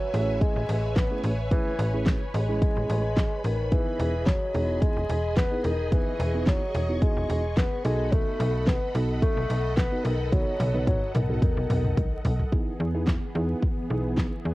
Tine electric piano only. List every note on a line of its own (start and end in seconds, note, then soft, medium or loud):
0.14 0.61 A3 medium
0.14 0.61 C#4 medium
0.14 0.61 E4 medium
0.14 0.61 G#4 medium
1.11 1.31 A3 medium
1.11 1.31 C#4 medium
1.11 1.31 E4 medium
1.11 1.31 G#4 medium
1.51 1.72 A3 medium
1.51 1.72 C#4 medium
1.51 1.72 E4 medium
1.51 1.72 G#4 medium
1.93 2.20 A3 medium
1.93 2.20 C#4 medium
1.93 2.20 E4 medium
1.93 2.20 G#4 medium
2.49 3.02 G#3 medium
2.49 3.02 C#4 medium
2.49 3.02 E4 medium
2.49 3.02 G#4 medium
3.72 4.12 B3 medium
3.72 4.12 D#4 medium
3.72 4.12 E4 medium
3.72 4.13 G#4 medium
4.54 5.01 B3 medium
4.54 5.01 D#4 medium
4.54 5.01 E4 medium
4.54 5.01 G#4 medium
5.51 5.71 B3 medium
5.51 5.71 D#4 medium
5.51 5.71 E4 medium
5.51 5.71 G#4 medium
5.92 6.12 B3 medium
5.92 6.12 D#4 medium
5.92 6.12 E4 medium
5.92 6.13 G#4 medium
6.34 6.61 B3 medium
6.34 6.61 D#4 medium
6.34 6.61 E4 medium
6.34 6.61 G#4 medium
6.89 7.42 B3 medium
6.89 7.42 D#4 medium
6.89 7.42 E4 medium
6.89 7.42 F#4 medium
7.84 8.73 B3 medium
7.84 8.73 D#4 medium
7.84 8.73 F#4 medium
7.84 8.73 A4 medium
8.95 9.42 B3 medium
8.95 9.42 D#4 medium
8.95 9.42 F#4 medium
8.95 9.42 A4 medium
9.92 10.11 B3 medium
9.92 10.11 D#4 medium
9.92 10.11 F#4 medium
9.92 10.11 B4 medium
10.32 10.53 B3 medium
10.32 10.53 D#4 medium
10.32 10.53 F#4 medium
10.32 10.53 A4 medium
10.74 11.01 B3 medium
10.74 11.01 D#4 medium
10.74 11.01 F#4 medium
10.74 11.01 B4 medium
11.29 11.82 B3 medium
11.29 11.82 D#4 medium
11.29 11.83 F#4 medium
11.29 11.83 A4 medium
12.52 12.73 B3 medium
12.52 12.73 D#4 medium
12.52 12.73 E4 medium
12.52 12.73 G#4 medium
12.95 13.14 B3 medium
12.95 13.14 D#4 medium
12.95 13.14 E4 medium
12.95 13.14 G#4 medium
13.35 13.62 B3 medium
13.35 13.62 D#4 medium
13.35 13.62 E4 medium
13.35 13.62 G#4 loud
13.90 14.31 B3 medium
13.90 14.31 D#4 medium
13.90 14.31 E4 medium
13.90 14.31 G#4 medium